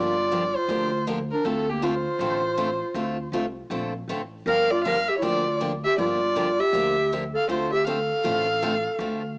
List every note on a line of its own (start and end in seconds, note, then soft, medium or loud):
0.00 0.53 G1 medium
0.00 0.14 D3 medium
0.00 0.14 F3 medium
0.00 0.14 A#3 medium
0.00 0.14 D4 medium
0.00 0.55 F4 medium
0.00 0.14 G4 medium
0.00 0.57 D5 loud
0.32 0.42 D3 medium
0.32 0.42 F3 medium
0.32 0.43 A#3 medium
0.32 0.43 D4 medium
0.32 0.43 G4 medium
0.55 1.07 F4 medium
0.55 1.07 C5 loud
0.68 1.29 D2 loud
0.68 0.90 D3 medium
0.68 0.90 F3 medium
0.68 0.90 A#3 medium
0.68 0.90 D4 medium
0.68 0.90 G4 medium
1.07 1.18 D3 medium
1.07 1.18 F3 medium
1.07 1.18 A#3 medium
1.07 1.18 D4 medium
1.07 1.18 G4 medium
1.32 1.47 D4 medium
1.32 1.47 A#4 medium
1.45 2.05 D2 medium
1.45 1.65 D3 medium
1.45 1.66 A3 medium
1.45 1.66 C4 medium
1.45 1.71 C4 medium
1.45 1.66 F4 medium
1.45 1.71 A4 medium
1.45 1.66 A4 medium
1.69 1.85 A#3 medium
1.69 1.85 G4 medium
1.82 1.93 D3 medium
1.82 1.93 A3 medium
1.82 1.94 C4 loud
1.82 3.34 F4 medium
1.82 1.94 F4 loud
1.82 1.94 A4 loud
1.82 3.34 C5 medium
2.19 2.80 A1 medium
2.19 2.41 D3 medium
2.19 2.41 A3 medium
2.19 2.41 C4 medium
2.19 2.41 F4 medium
2.19 2.42 A4 medium
2.57 2.69 D3 medium
2.57 2.69 A3 medium
2.57 2.69 C4 medium
2.57 2.69 F4 medium
2.57 2.69 A4 medium
2.94 3.25 D2 medium
2.94 3.16 D3 medium
2.94 3.16 A3 medium
2.94 3.17 C4 medium
2.94 3.17 F4 medium
2.94 3.17 A4 medium
3.32 3.65 C2 medium
3.32 3.44 D3 medium
3.32 3.44 A3 medium
3.32 3.45 C4 medium
3.32 3.44 F4 medium
3.32 3.45 A4 medium
3.70 4.03 A#1 medium
3.70 3.92 D3 medium
3.70 3.92 A3 medium
3.70 3.92 C4 medium
3.70 3.92 F4 medium
3.70 3.92 A4 medium
4.08 4.40 A1 medium
4.08 4.20 D3 medium
4.08 4.20 A3 medium
4.08 4.20 C4 medium
4.08 4.20 F4 medium
4.08 4.21 A4 medium
4.46 5.07 G1 medium
4.46 4.68 D3 medium
4.46 4.68 F3 medium
4.46 4.68 A#3 medium
4.46 4.68 D4 medium
4.46 4.68 G4 medium
4.46 4.73 A#4 medium
4.46 4.72 F5 loud
4.71 4.85 F4 medium
4.71 4.84 D5 loud
4.84 4.96 D3 medium
4.84 4.96 F3 medium
4.84 4.96 A#3 medium
4.84 4.96 D4 medium
4.84 4.96 G4 loud
4.84 5.11 A#4 medium
4.84 5.10 F5 loud
5.08 5.18 G4 medium
5.08 5.17 E5 medium
5.17 5.26 E4 medium
5.17 5.24 C#5 medium
5.22 5.83 D2 medium
5.22 5.43 D3 medium
5.22 5.43 F3 medium
5.22 5.43 A#3 medium
5.22 5.44 D4 medium
5.22 5.61 F4 medium
5.22 5.44 G4 medium
5.22 5.60 D5 loud
5.60 5.71 D3 medium
5.60 5.71 F3 medium
5.60 5.71 A#3 medium
5.60 5.71 D4 medium
5.60 5.72 G4 medium
5.84 5.98 G4 medium
5.84 5.97 E5 loud
5.98 6.58 G1 medium
5.98 6.19 D3 medium
5.98 6.19 F3 medium
5.98 6.19 A#3 medium
5.98 6.19 D4 medium
5.98 6.61 F4 medium
5.98 6.19 G4 medium
5.98 6.62 D5 loud
6.36 6.47 D3 medium
6.36 6.47 F3 medium
6.36 6.47 A#3 medium
6.36 6.47 D4 loud
6.36 6.47 G4 medium
6.60 7.12 G4 medium
6.60 7.12 E5 loud
6.73 7.33 D2 loud
6.73 6.95 D3 medium
6.73 6.95 F3 medium
6.73 6.95 A#3 medium
6.73 6.95 D4 medium
6.73 6.95 G4 medium
7.12 7.23 D3 medium
7.12 7.23 F3 medium
7.12 7.23 A#3 medium
7.12 7.23 D4 medium
7.12 7.23 G4 medium
7.34 7.48 A4 medium
7.34 7.49 F5 medium
7.49 8.09 D2 loud
7.49 7.70 D3 medium
7.49 7.70 A3 medium
7.49 7.70 C4 medium
7.49 7.71 F4 medium
7.49 7.70 F4 medium
7.49 7.70 A4 medium
7.49 7.71 C5 medium
7.72 7.86 G4 medium
7.72 7.86 E5 loud
7.87 7.98 D3 medium
7.87 7.98 A3 medium
7.87 7.98 C4 medium
7.87 7.98 F4 medium
7.87 9.34 A4 medium
7.87 7.98 A4 loud
7.87 9.34 F5 medium
8.23 8.85 A1 medium
8.23 8.45 D3 medium
8.23 8.45 A3 medium
8.23 8.46 C4 medium
8.23 8.45 F4 medium
8.23 8.46 A4 medium
8.62 8.73 D3 medium
8.62 8.73 A3 loud
8.62 8.73 C4 medium
8.62 8.74 F4 loud
8.62 8.74 A4 loud
8.99 9.38 D2 medium
8.99 9.21 D3 medium
8.99 9.21 A3 medium
8.99 9.21 C4 medium
8.99 9.21 F4 medium
8.99 9.21 A4 medium